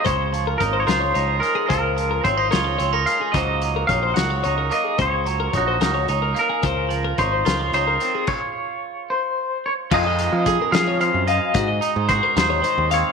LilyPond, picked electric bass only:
\new Staff \with { instrumentName = "Picked electric bass" } { \clef bass \time 6/8 \key des \major \tempo 4. = 73 des,4 aes,,8 des,8 des,8 r8 | des,4 aes,,8 des,8 des,8 r8 | des,4 bes,,8 des,8 des,8 r8 | des,4 bes,,8 des,8 des,8 r8 |
des,4 aes,,8 des,8 des,8 r8 | r2. | f,8. f8 r16 f8. ges,8 r16 | aes,8 r16 aes,8 r16 ees,8 r16 ees,8 r16 | }